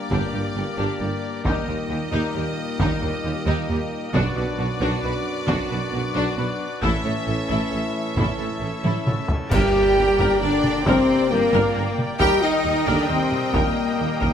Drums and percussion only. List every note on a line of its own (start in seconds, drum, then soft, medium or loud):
0.12 taiko medium
1.45 taiko medium
2.80 taiko medium
4.14 taiko medium
5.48 taiko medium
6.83 taiko medium
8.17 taiko medium
8.85 taiko high medium
9.07 taiko mid medium
9.29 taiko low medium
9.51 concert bass drum medium
9.51 taiko medium
9.51 crash medium
10.20 taiko medium
10.64 taiko mid medium
10.86 taiko loud
11.53 taiko medium
11.98 taiko mid medium
12.20 taiko medium
12.87 taiko medium
13.32 taiko mid medium
13.54 taiko medium
14.21 taiko medium